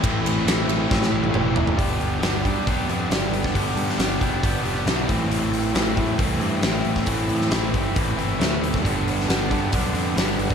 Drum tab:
RD |x-x-x-x---------|----------------|----------------|----------------|
HH |----------------|o-o-o-o-o-o-o-o-|o-o-o-o-o-o-o-o-|o-o-o-o-o-o-o-o-|
SD |----o---oo------|----o-------o--o|---oo-------o---|----o-------o--o|
T1 |-----------o----|----------------|----------------|----------------|
T2 |------------o---|----------------|----------------|----------------|
FT |--------------oo|----------------|----------------|----------------|
BD |o-------o-------|o-----o-o------o|o-----o-o-----o-|------o-o------o|

RD |----------------|----------------|
HH |o-o-o-o-o-o-o-o-|o-o-o-o-o-o-o-o-|
SD |---oo-------o--o|---oo-------o---|
T1 |----------------|----------------|
T2 |----------------|----------------|
FT |----------------|----------------|
BD |o-----o-o------o|o-----o-o------o|